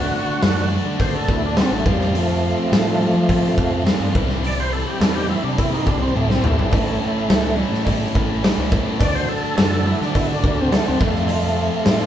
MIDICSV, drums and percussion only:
0, 0, Header, 1, 2, 480
1, 0, Start_track
1, 0, Tempo, 571973
1, 1800, Time_signature, 4, 2, 24, 8
1, 10122, End_track
2, 0, Start_track
2, 0, Title_t, "Drums"
2, 357, Note_on_c, 9, 38, 109
2, 357, Note_on_c, 9, 46, 58
2, 441, Note_off_c, 9, 38, 0
2, 441, Note_off_c, 9, 46, 0
2, 835, Note_on_c, 9, 46, 53
2, 837, Note_on_c, 9, 36, 87
2, 919, Note_off_c, 9, 46, 0
2, 921, Note_off_c, 9, 36, 0
2, 1078, Note_on_c, 9, 36, 81
2, 1162, Note_off_c, 9, 36, 0
2, 1316, Note_on_c, 9, 38, 99
2, 1316, Note_on_c, 9, 46, 52
2, 1400, Note_off_c, 9, 38, 0
2, 1400, Note_off_c, 9, 46, 0
2, 1560, Note_on_c, 9, 36, 110
2, 1644, Note_off_c, 9, 36, 0
2, 1684, Note_on_c, 9, 38, 30
2, 1768, Note_off_c, 9, 38, 0
2, 1803, Note_on_c, 9, 46, 60
2, 1887, Note_off_c, 9, 46, 0
2, 2290, Note_on_c, 9, 38, 114
2, 2290, Note_on_c, 9, 46, 55
2, 2374, Note_off_c, 9, 38, 0
2, 2374, Note_off_c, 9, 46, 0
2, 2760, Note_on_c, 9, 46, 59
2, 2762, Note_on_c, 9, 36, 89
2, 2844, Note_off_c, 9, 46, 0
2, 2846, Note_off_c, 9, 36, 0
2, 3002, Note_on_c, 9, 36, 91
2, 3086, Note_off_c, 9, 36, 0
2, 3244, Note_on_c, 9, 38, 93
2, 3244, Note_on_c, 9, 46, 52
2, 3328, Note_off_c, 9, 38, 0
2, 3328, Note_off_c, 9, 46, 0
2, 3484, Note_on_c, 9, 36, 106
2, 3568, Note_off_c, 9, 36, 0
2, 3605, Note_on_c, 9, 38, 31
2, 3689, Note_off_c, 9, 38, 0
2, 3727, Note_on_c, 9, 46, 65
2, 3810, Note_off_c, 9, 46, 0
2, 4208, Note_on_c, 9, 38, 109
2, 4208, Note_on_c, 9, 46, 57
2, 4292, Note_off_c, 9, 38, 0
2, 4292, Note_off_c, 9, 46, 0
2, 4686, Note_on_c, 9, 36, 81
2, 4686, Note_on_c, 9, 46, 54
2, 4770, Note_off_c, 9, 36, 0
2, 4770, Note_off_c, 9, 46, 0
2, 4925, Note_on_c, 9, 36, 83
2, 5008, Note_off_c, 9, 36, 0
2, 5171, Note_on_c, 9, 48, 54
2, 5255, Note_off_c, 9, 48, 0
2, 5288, Note_on_c, 9, 38, 68
2, 5372, Note_off_c, 9, 38, 0
2, 5402, Note_on_c, 9, 45, 90
2, 5486, Note_off_c, 9, 45, 0
2, 5530, Note_on_c, 9, 43, 75
2, 5614, Note_off_c, 9, 43, 0
2, 5635, Note_on_c, 9, 56, 96
2, 5646, Note_on_c, 9, 36, 117
2, 5651, Note_on_c, 9, 46, 54
2, 5719, Note_off_c, 9, 56, 0
2, 5730, Note_off_c, 9, 36, 0
2, 5735, Note_off_c, 9, 46, 0
2, 6116, Note_on_c, 9, 56, 70
2, 6126, Note_on_c, 9, 38, 119
2, 6126, Note_on_c, 9, 46, 50
2, 6200, Note_off_c, 9, 56, 0
2, 6210, Note_off_c, 9, 38, 0
2, 6210, Note_off_c, 9, 46, 0
2, 6360, Note_on_c, 9, 56, 72
2, 6443, Note_off_c, 9, 56, 0
2, 6493, Note_on_c, 9, 38, 31
2, 6577, Note_off_c, 9, 38, 0
2, 6586, Note_on_c, 9, 56, 95
2, 6602, Note_on_c, 9, 36, 77
2, 6608, Note_on_c, 9, 46, 55
2, 6670, Note_off_c, 9, 56, 0
2, 6686, Note_off_c, 9, 36, 0
2, 6692, Note_off_c, 9, 46, 0
2, 6842, Note_on_c, 9, 36, 93
2, 6926, Note_off_c, 9, 36, 0
2, 7076, Note_on_c, 9, 56, 71
2, 7086, Note_on_c, 9, 38, 108
2, 7086, Note_on_c, 9, 46, 54
2, 7160, Note_off_c, 9, 56, 0
2, 7169, Note_off_c, 9, 38, 0
2, 7169, Note_off_c, 9, 46, 0
2, 7317, Note_on_c, 9, 56, 67
2, 7318, Note_on_c, 9, 36, 93
2, 7401, Note_off_c, 9, 56, 0
2, 7402, Note_off_c, 9, 36, 0
2, 7549, Note_on_c, 9, 56, 96
2, 7557, Note_on_c, 9, 36, 115
2, 7557, Note_on_c, 9, 46, 65
2, 7633, Note_off_c, 9, 56, 0
2, 7641, Note_off_c, 9, 36, 0
2, 7641, Note_off_c, 9, 46, 0
2, 8034, Note_on_c, 9, 56, 74
2, 8038, Note_on_c, 9, 38, 113
2, 8038, Note_on_c, 9, 46, 61
2, 8118, Note_off_c, 9, 56, 0
2, 8122, Note_off_c, 9, 38, 0
2, 8122, Note_off_c, 9, 46, 0
2, 8401, Note_on_c, 9, 38, 28
2, 8484, Note_off_c, 9, 38, 0
2, 8517, Note_on_c, 9, 56, 85
2, 8519, Note_on_c, 9, 36, 83
2, 8523, Note_on_c, 9, 46, 55
2, 8601, Note_off_c, 9, 56, 0
2, 8603, Note_off_c, 9, 36, 0
2, 8607, Note_off_c, 9, 46, 0
2, 8759, Note_on_c, 9, 36, 94
2, 8843, Note_off_c, 9, 36, 0
2, 9000, Note_on_c, 9, 38, 97
2, 9000, Note_on_c, 9, 46, 57
2, 9003, Note_on_c, 9, 56, 83
2, 9084, Note_off_c, 9, 38, 0
2, 9084, Note_off_c, 9, 46, 0
2, 9087, Note_off_c, 9, 56, 0
2, 9236, Note_on_c, 9, 56, 73
2, 9237, Note_on_c, 9, 36, 100
2, 9320, Note_off_c, 9, 56, 0
2, 9321, Note_off_c, 9, 36, 0
2, 9358, Note_on_c, 9, 38, 33
2, 9442, Note_off_c, 9, 38, 0
2, 9467, Note_on_c, 9, 56, 99
2, 9472, Note_on_c, 9, 46, 60
2, 9550, Note_off_c, 9, 56, 0
2, 9556, Note_off_c, 9, 46, 0
2, 9951, Note_on_c, 9, 38, 107
2, 9951, Note_on_c, 9, 46, 58
2, 9951, Note_on_c, 9, 56, 86
2, 10035, Note_off_c, 9, 38, 0
2, 10035, Note_off_c, 9, 46, 0
2, 10035, Note_off_c, 9, 56, 0
2, 10122, End_track
0, 0, End_of_file